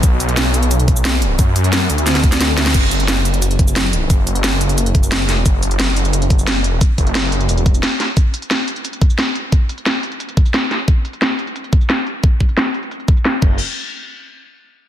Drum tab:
CC |----------------|----------------|x---------------|----------------|
HH |x-xxx-xxxxx-x-x-|x-xxx-xxxxxxx-x-|x-xxx-xxxxx-x-x-|x-xxx-xxxxxxx-x-|
SH |x-x-x-x-x--xx---|x-x-x-x-x--xx-x-|x-x-x-x-x--xx---|x-x-x-x-x--xx-x-|
SD |----o-------o---|----o---oo-oo-oo|----o-------o---|----o-------o-o-|
BD |o---------o-----|o---------o-----|o---------o-----|o---------o-----|

CC |----------------|----------------|----------------|----------------|
HH |x-xxx-xxxxx-x-x-|x-xxx-xxxxxxx-x-|x-xxx-xxxxx-x-x-|x-xxx-xxxxxxx-x-|
SH |x-x-x-x-x--xx---|x-x-x-x-x--xx-x-|x-x-x-x-x--xx---|x-x-x-x-x--xx-x-|
SD |----o-------o---|----o-------o-o-|----o-------o---|----o-------o-o-|
BD |o---------o-----|o-o-------o-----|o---------o-----|o---------o-----|

CC |----------------|--------------x-|----------------|
HH |x-xxx-xxxxx-x-x-|x-xxx-xxxxxxx---|----------------|
SH |x-x-x-x-x--xx---|x---x-x-x--xx---|----------------|
SD |----o-------o---|----o-------o---|----------------|
BD |o---------o-----|o-o-------o---o-|----------------|